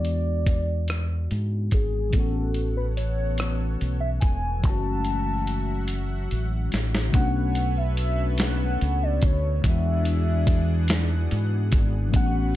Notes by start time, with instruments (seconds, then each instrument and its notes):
Already playing: fingered electric bass E2, tine electric piano E3 G#3 B3 D4 F#4, soft synth lead D5
0.05 closed hi-hat
0.47 kick, closed hi-hat
0.88 cross-stick, closed hi-hat
1.31 fingered electric bass G#2, closed hi-hat
1.71 fingered electric bass G#1, soft synth lead G#4, kick, closed hi-hat
2.09 tine electric piano E3 A3, analog synth pad B3 A4 C#5 F#5, kick, closed hi-hat
2.14 fingered electric bass A1, tine electric piano B3 C#4, soft synth lead A4
2.20 tine electric piano F#4
2.54 closed hi-hat
2.77 soft synth lead B4
2.97 soft synth lead C#5, closed hi-hat
3.38 cross-stick, closed hi-hat
3.81 fingered electric bass B1, closed hi-hat
4.00 soft synth lead E5
4.20 fingered electric bass E1, soft synth lead G#5, kick, closed hi-hat
4.59 tine electric piano E3 G#3, analog synth pad F#4, soft synth lead A5
4.63 fingered electric bass F#1, analog synth pad F#3 E5 F#5, tine electric piano A3 C#4, kick, closed hi-hat
4.69 tine electric piano F#4
5.04 closed hi-hat
5.47 closed hi-hat
5.88 closed hi-hat
6.31 fingered electric bass A1, closed hi-hat
6.72 fingered electric bass A1, snare, closed hi-hat
6.95 snare
7.09 tine electric piano C#3 A3
7.14 fingered electric bass B1, analog synth pad B3 A4 B4 C#5, tine electric piano B3 C#4 D4, soft synth lead F#5, kick, closed hi-hat
7.20 tine electric piano F#4
7.55 closed hi-hat
7.77 soft synth lead E5
7.97 soft synth lead E5, closed hi-hat
8.38 soft synth lead F#5, snare, closed hi-hat
8.81 fingered electric bass C#2, closed hi-hat
9.03 soft synth lead D5
9.22 fingered electric bass D2, soft synth lead C#5, kick, closed hi-hat
9.60 tine electric piano E3 G#3, analog synth pad E3 G#4 F#5
9.64 fingered electric bass E2, tine electric piano B3 D4, analog synth pad D4, soft synth lead E5, kick, closed hi-hat
9.70 tine electric piano F#4
10.05 closed hi-hat
10.47 kick, closed hi-hat
10.88 snare, closed hi-hat
11.31 fingered electric bass G#2, closed hi-hat
11.72 fingered electric bass G#1, kick, closed hi-hat
12.09 tine electric piano E3 A3, analog synth pad A3 F#4 B4
12.13 fingered electric bass A1, tine electric piano B3 C#4, analog synth pad C#5, soft synth lead F#5, kick, closed hi-hat
12.20 tine electric piano F4
12.26 tine electric piano F#4